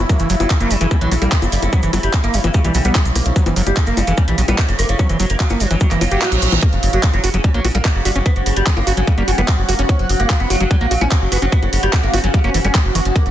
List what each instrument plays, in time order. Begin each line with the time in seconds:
Already playing: synth drone E4
0.09 acid bass F#3, oud A#3, kick, closed hi-hat, high bongo, cabasa
0.19 analog synth bass F#1, oud C#3, acid bass E3, closed hi-hat, cabasa
0.30 analog synth bass F#1, oud C#3, acid bass F#3, open hi-hat, cabasa
0.40 analog synth bass F#1, oud F#3, closed hi-hat, high bongo, cabasa
0.50 oud C#3, kick, clap, closed hi-hat, cabasa
0.60 analog synth bass F#1, oud F#3, acid bass A#3, closed hi-hat, high bongo, cabasa
0.71 analog synth bass F#1, oud C#3, acid bass F#3, open hi-hat, cabasa
0.80 analog synth bass F#1, oud C#3, acid bass E3, closed hi-hat, cabasa
0.91 oud C#3, acid bass G3, kick, closed hi-hat, high bongo, cabasa
1.01 analog synth bass A#1, acid bass E3, oud F#3, closed hi-hat
1.11 analog synth bass A#1, oud C#3, acid bass F#3, open hi-hat, high bongo, cabasa
1.22 analog synth bass A#1, acid bass G3, oud A#3, closed hi-hat, cabasa
1.31 oud C#3, kick, clap, closed hi-hat, cabasa
1.42 analog synth bass F#1, oud C#3, closed hi-hat, high bongo, cabasa
1.52 analog synth bass F#1, oud G3, open hi-hat, cabasa
1.62 analog synth bass F#1, oud C#3, closed hi-hat, high bongo, cabasa
1.73 acid bass F#3, oud B3, kick, closed hi-hat, cabasa
1.83 analog synth bass F#1, oud C#3, acid bass E3, closed hi-hat, cabasa
1.93 analog synth bass F#1, oud C#3, acid bass F#3, open hi-hat, high bongo, cabasa
2.03 analog synth bass F#1, oud G3, closed hi-hat, cabasa
2.13 oud C#3, kick, clap, closed hi-hat, high bongo, cabasa
2.24 analog synth bass G1, oud A#3, acid bass A#3, closed hi-hat, cabasa
2.34 analog synth bass G1, oud C#3, acid bass F#3, open hi-hat, cabasa
2.44 analog synth bass G1, oud C#3, acid bass E3, closed hi-hat, high bongo, cabasa
2.54 oud C#3, acid bass G3, kick, closed hi-hat, cabasa
2.64 analog synth bass B1, acid bass E3, oud G3, closed hi-hat, high bongo, cabasa
2.74 analog synth bass B1, oud C#3, acid bass F#3, open hi-hat, cabasa
2.84 analog synth bass B1, acid bass G3, oud B3, closed hi-hat, cabasa
2.95 oud C#3, kick, clap, closed hi-hat, high bongo, cabasa
3.05 analog synth bass B1, oud C#3, closed hi-hat, cabasa
3.15 analog synth bass B1, oud A#3, open hi-hat, high bongo, cabasa
3.25 analog synth bass B1, oud C#3, closed hi-hat, cabasa
3.36 acid bass F#3, oud B3, kick, closed hi-hat, cabasa
3.46 analog synth bass F#1, oud C#3, acid bass E3, closed hi-hat, high bongo, cabasa
3.56 analog synth bass F#1, oud C#3, acid bass F#3, open hi-hat, cabasa
3.66 analog synth bass F#1, oud G3, closed hi-hat, high bongo, cabasa
3.77 oud C#3, kick, clap, closed hi-hat, cabasa
3.87 analog synth bass F#1, acid bass A#3, oud A#3, closed hi-hat, cabasa
3.97 analog synth bass F#1, oud C#3, acid bass F#3, open hi-hat, high bongo, cabasa
4.07 analog synth bass F#1, oud C#3, acid bass E3, closed hi-hat, cabasa
4.17 oud C#3, acid bass G3, kick, closed hi-hat, high bongo, cabasa
4.28 analog synth bass A#1, acid bass E3, oud G3, closed hi-hat
4.38 analog synth bass A#1, oud C#3, acid bass F#3, open hi-hat, cabasa
4.48 analog synth bass A#1, acid bass G3, oud B3, closed hi-hat, high bongo, cabasa
4.58 oud C#3, kick, clap, closed hi-hat, cabasa
4.69 analog synth bass F#1, oud C#3, closed hi-hat, high bongo, cabasa
4.79 analog synth bass F#1, oud A#3, open hi-hat, cabasa
4.89 analog synth bass F#1, oud C#3, closed hi-hat, cabasa
4.99 acid bass F#3, oud C#4, kick, closed hi-hat, high bongo, cabasa
5.09 analog synth bass F#1, acid bass E3, oud F#3, closed hi-hat, cabasa
5.20 analog synth bass F#1, oud F#3, acid bass F#3, open hi-hat, high bongo, cabasa
5.30 analog synth bass F#1, oud A#3, closed hi-hat, cabasa
5.40 oud F#3, kick, clap, closed hi-hat, cabasa
5.50 analog synth bass G1, acid bass A#3, oud B3, closed hi-hat, high bongo, cabasa
5.60 analog synth bass G1, oud F#3, acid bass F#3, open hi-hat, cabasa
5.70 analog synth bass G1, acid bass E3, oud F#3, closed hi-hat, high bongo, cabasa
5.80 oud F#3, acid bass G3, kick, closed hi-hat, reverse cymbal, cabasa
5.91 analog synth bass F#1, acid bass E3, oud A#3, clap, closed hi-hat, cabasa
6.01 analog synth bass F#1, oud F#3, acid bass F#3, open hi-hat, high bongo, cabasa
6.10 analog synth bass F#1, oud F#3, acid bass G4, closed hi-hat, cabasa
6.21 oud F#3, clap, closed hi-hat, high bongo, cabasa
6.32 analog synth bass A#1, oud F#3, closed hi-hat, cabasa
6.42 analog synth bass A#1, oud F#3, open hi-hat, cabasa
6.52 analog synth bass A#1, acid bass E3, oud F#3, closed hi-hat, high bongo, cabasa
6.62 oud A#3, ambient pad C#4, kick, closed hi-hat, impact
6.73 analog synth bass F#1, oud C#3, ambient pad F#4 F#5, closed hi-hat
6.83 analog synth bass F#1, oud C#3, open hi-hat
6.93 analog synth bass F#1, oud F#3, closed hi-hat
7.03 acid bass F#3, kick, clap, closed hi-hat
7.13 analog synth bass F#1, oud F#3, closed hi-hat, high bongo
7.24 analog synth bass F#1, oud C#3, acid bass F#4, open hi-hat
7.34 analog synth bass F#1, oud C#3, acid bass F#3, closed hi-hat
7.44 oud C#3, acid bass G3, kick, closed hi-hat
7.54 analog synth bass A#1, oud F#3, acid bass A#3, closed hi-hat
7.65 analog synth bass A#1, oud C#3, acid bass F#4, open hi-hat, high bongo
7.75 analog synth bass A#1, acid bass G3, oud A#3, closed hi-hat
7.85 oud C#3, kick, clap, closed hi-hat
7.95 analog synth bass F#1, oud C#3
8.05 analog synth bass F#1, oud G3, acid bass F#4, open hi-hat
8.16 analog synth bass F#1, oud C#3, acid bass C#4, closed hi-hat
8.26 oud B3, kick, closed hi-hat, high bongo
8.36 analog synth bass F#1, oud C#3, closed hi-hat
8.46 analog synth bass F#1, oud C#3, open hi-hat
8.56 analog synth bass F#1, oud G3, closed hi-hat
8.67 oud C#3, acid bass F#3, kick, clap, closed hi-hat
8.77 analog synth bass G1, oud A#3, closed hi-hat, high bongo
8.87 analog synth bass G1, oud C#3, acid bass F#4, open hi-hat
8.97 analog synth bass G1, oud C#3, acid bass F#3, closed hi-hat
9.07 oud C#3, acid bass G3, kick, closed hi-hat
9.18 analog synth bass F#1, oud G3, acid bass A#3, closed hi-hat
9.28 analog synth bass F#1, oud C#3, acid bass F#4, open hi-hat
9.38 analog synth bass F#1, acid bass G3, oud B3, closed hi-hat, high bongo
9.48 oud C#3, kick, clap, closed hi-hat
9.58 analog synth bass F#1, oud C#3
9.69 analog synth bass F#1, oud A#3, acid bass F#4, open hi-hat
9.79 analog synth bass F#1, oud C#3, acid bass C#4, closed hi-hat
9.89 oud C#4, kick, closed hi-hat, high bongo
9.99 analog synth bass F#1, oud F#3, closed hi-hat
10.09 analog synth bass F#1, oud F#3, open hi-hat
10.20 analog synth bass F#1, oud A#3, closed hi-hat
10.30 oud F#3, acid bass F#3, kick, clap, closed hi-hat
10.40 analog synth bass F#1, oud B3, closed hi-hat
10.50 analog synth bass F#1, oud F#3, acid bass F#4, open hi-hat, high bongo
10.60 analog synth bass F#1, oud F#3, acid bass F#3, closed hi-hat
10.71 oud F#3, acid bass G3, kick, closed hi-hat
10.81 analog synth bass A#1, oud A#3, acid bass A#3, closed hi-hat
10.91 analog synth bass A#1, oud F#3, acid bass F#4, open hi-hat
11.01 analog synth bass A#1, acid bass G3, oud C#4, closed hi-hat, high bongo
11.11 oud F#3, kick, clap, closed hi-hat
11.22 analog synth bass F#1, oud F#3
11.32 analog synth bass F#1, oud B3, acid bass F#4, open hi-hat
11.42 analog synth bass F#1, oud F#3, acid bass C#4, closed hi-hat
11.52 oud B3, kick, closed hi-hat
11.62 analog synth bass F#1, oud C#3, closed hi-hat, high bongo
11.73 analog synth bass F#1, oud C#3, open hi-hat
11.83 analog synth bass F#1, oud G3, closed hi-hat
11.93 oud C#3, acid bass F#3, kick, clap, closed hi-hat
12.03 analog synth bass G1, oud A#3, closed hi-hat
12.14 analog synth bass G1, oud C#3, acid bass F#4, open hi-hat, high bongo
12.24 analog synth bass G1, oud C#3, acid bass F#3, closed hi-hat
12.34 oud C#3, acid bass G3, kick, closed hi-hat
12.44 analog synth bass F#1, acid bass A#3, oud C#4, closed hi-hat
12.54 analog synth bass F#1, oud C#3, acid bass E3, open hi-hat
12.65 analog synth bass F#1, acid bass G3, oud C#4, closed hi-hat
12.75 oud C#3, acid bass F#3, kick, clap, closed hi-hat, high bongo
12.85 analog synth bass F#1, oud C#3
12.95 analog synth bass F#1, acid bass E3, oud F#4, open hi-hat
13.05 analog synth bass F#1, oud C#3, closed hi-hat
13.16 oud A#3, kick, closed hi-hat
13.26 analog synth bass F#1, oud C#3, ambient pad B5, closed hi-hat